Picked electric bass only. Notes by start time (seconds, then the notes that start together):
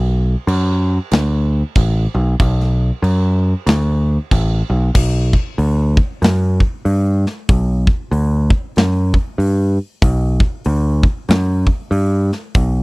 Already playing: B1
0.47 F#2
1.12 D2
1.76 A1
2.14 B1
2.40 B1
3.02 F#2
3.66 D2
4.32 A1
4.70 B1
4.94 B1
5.58 D2
6.22 F#2
6.85 G2
7.49 B1
8.11 D2
8.77 F#2
9.38 G2
10.02 B1
10.66 D2
11.29 F#2
11.91 G2
12.55 B1